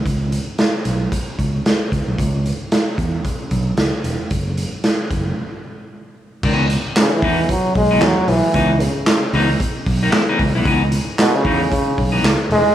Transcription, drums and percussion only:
0.06 kick, closed hi-hat
0.32 closed hi-hat
0.58 snare, closed hi-hat
0.85 closed hi-hat
1.12 kick, closed hi-hat
1.39 kick, closed hi-hat
1.66 snare, closed hi-hat
1.92 kick, closed hi-hat
2.18 kick, closed hi-hat
2.46 closed hi-hat
2.72 snare, closed hi-hat
2.98 kick, closed hi-hat
3.25 kick, closed hi-hat
3.51 kick, closed hi-hat
3.77 snare, closed hi-hat
4.04 closed hi-hat
4.31 kick, closed hi-hat
4.57 closed hi-hat
4.84 snare, closed hi-hat
5.11 kick, closed hi-hat
6.43 kick, crash
6.70 closed hi-hat
6.96 snare, clap, closed hi-hat
7.22 kick, open hi-hat
7.49 kick, closed hi-hat
7.75 kick, open hi-hat
8.01 snare, clap, closed hi-hat
8.28 open hi-hat
8.54 kick, closed hi-hat
8.80 closed hi-hat
9.06 snare, clap, closed hi-hat
9.33 open hi-hat
9.60 kick, closed hi-hat
9.86 kick, open hi-hat
10.12 snare, clap, closed hi-hat
10.39 kick, open hi-hat
10.65 kick, closed hi-hat
10.92 closed hi-hat
11.19 snare, clap, closed hi-hat
11.45 kick, open hi-hat
11.72 kick, closed hi-hat
11.98 kick, open hi-hat
12.25 snare, clap, closed hi-hat
12.51 open hi-hat

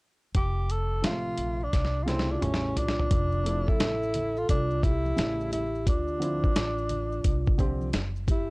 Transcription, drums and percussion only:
0.35 kick, closed hi-hat
0.70 closed hi-hat
1.04 snare, closed hi-hat
1.38 closed hi-hat
1.73 kick, snare, closed hi-hat
1.85 snare
2.08 snare, closed hi-hat
2.19 snare
2.42 closed hi-hat, mid tom
2.54 snare
2.77 closed hi-hat, floor tom
2.88 snare
2.99 floor tom
3.11 kick, closed hi-hat, maracas
3.32 maracas
3.46 closed hi-hat, maracas
3.68 kick, maracas
3.80 snare, closed hi-hat, maracas
4.03 maracas
4.14 closed hi-hat, low conga, maracas
4.37 maracas
4.49 kick, closed hi-hat, maracas
4.70 maracas
4.83 kick, closed hi-hat, maracas
5.05 high conga, maracas
5.17 snare, closed hi-hat, maracas
5.41 maracas
5.52 closed hi-hat, low conga, maracas
5.75 maracas
5.87 kick, closed hi-hat, maracas
6.08 maracas
6.22 closed hi-hat, maracas
6.44 kick, maracas
6.55 snare, closed hi-hat, maracas
6.78 maracas
6.89 closed hi-hat, low conga, maracas
7.12 maracas
7.24 kick, closed hi-hat
7.46 kick, maracas
7.58 kick, closed hi-hat, maracas
7.81 high conga, maracas
7.93 snare, closed hi-hat, maracas
8.16 maracas
8.27 kick, closed hi-hat, low conga, maracas

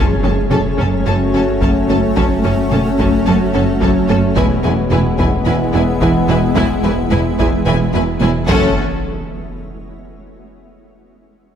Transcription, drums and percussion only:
0.24 taiko rim
0.51 taiko mid
0.79 taiko
1.62 taiko
2.17 taiko
2.72 taiko mid
2.99 taiko
3.82 taiko
4.37 taiko
4.91 taiko mid
5.19 taiko
6.02 taiko
6.29 taiko rim
6.57 taiko
7.12 taiko mid
7.39 taiko
7.94 taiko high
8.21 taiko high
8.49 taiko

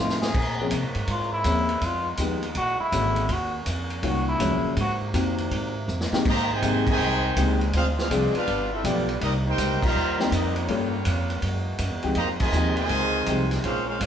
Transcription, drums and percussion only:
0.09 snare
0.22 snare
0.34 kick, crash
0.71 kick, hi-hat pedal, ride
0.95 ride
1.07 kick, ride
1.44 kick, hi-hat pedal, ride
1.69 ride
1.81 kick, ride
2.17 kick, hi-hat pedal, ride
2.42 ride
2.55 kick, ride
2.92 kick, hi-hat pedal, ride
3.16 ride
3.29 kick, ride
3.66 kick, hi-hat pedal, ride
3.90 ride
4.03 kick, ride
4.40 kick, hi-hat pedal, ride
4.76 kick, ride
5.14 kick, hi-hat pedal, ride
5.38 ride
5.51 kick, ride
5.88 hi-hat pedal
6.00 snare
6.13 snare
6.25 kick, crash
6.62 kick, hi-hat pedal, ride
6.87 kick, crash
7.36 kick, hi-hat pedal, ride
7.61 ride
7.73 kick, ride
7.98 snare
8.10 kick, hi-hat pedal, ride
8.35 ride
8.47 kick, ride
8.84 kick, hi-hat pedal, ride
9.09 ride
9.21 kick, ride
9.58 kick, hi-hat pedal, ride
9.82 kick, crash
10.19 snare
10.32 kick, hi-hat pedal, ride
10.56 ride
10.68 kick, ride
11.05 kick, hi-hat pedal, ride
11.30 ride
11.42 kick, ride
11.78 kick, hi-hat pedal, ride
12.03 ride
12.15 kick, ride
12.40 kick, crash
12.52 hi-hat pedal
12.77 ride
12.89 kick, ride
13.26 kick, hi-hat pedal, ride
13.51 snare, ride
13.64 kick, ride
14.01 kick, hi-hat pedal, ride

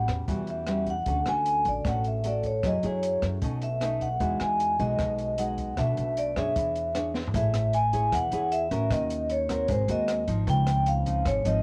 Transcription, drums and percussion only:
0.08 kick, cross-stick, closed hi-hat
0.28 kick, closed hi-hat
0.47 closed hi-hat
0.67 cross-stick, closed hi-hat
0.86 kick, closed hi-hat
1.06 kick, closed hi-hat
1.26 cross-stick, closed hi-hat
1.46 closed hi-hat
1.65 kick, closed hi-hat
1.85 kick, cross-stick, closed hi-hat
2.04 closed hi-hat
2.24 closed hi-hat
2.43 kick, closed hi-hat
2.63 kick, cross-stick, closed hi-hat
2.83 closed hi-hat
3.03 closed hi-hat
3.22 kick, cross-stick, closed hi-hat
3.42 kick, closed hi-hat
3.62 closed hi-hat
3.81 cross-stick, closed hi-hat
4.01 kick, closed hi-hat
4.20 kick, closed hi-hat
4.40 cross-stick, closed hi-hat
4.60 closed hi-hat
4.79 kick, closed hi-hat
4.99 kick, cross-stick, closed hi-hat
5.18 closed hi-hat
5.38 closed hi-hat
5.58 kick, closed hi-hat
5.77 kick, cross-stick, closed hi-hat
5.97 closed hi-hat
6.17 closed hi-hat
6.36 kick, cross-stick, closed hi-hat
6.56 kick, closed hi-hat
6.75 closed hi-hat
6.95 cross-stick, closed hi-hat
7.15 snare
7.28 floor tom
7.34 kick, closed hi-hat
7.54 cross-stick, closed hi-hat
7.73 closed hi-hat
7.93 kick, closed hi-hat
8.12 kick, cross-stick, closed hi-hat
8.32 closed hi-hat
8.52 closed hi-hat
8.71 kick, closed hi-hat
8.90 kick, cross-stick, closed hi-hat
9.10 closed hi-hat
9.30 closed hi-hat
9.49 kick, cross-stick, closed hi-hat
9.68 kick, closed hi-hat
9.88 closed hi-hat
10.08 cross-stick, closed hi-hat
10.27 kick, closed hi-hat
10.47 kick, closed hi-hat
10.67 cross-stick, closed hi-hat
10.86 closed hi-hat
11.06 kick, closed hi-hat
11.25 kick, cross-stick, closed hi-hat
11.45 closed hi-hat

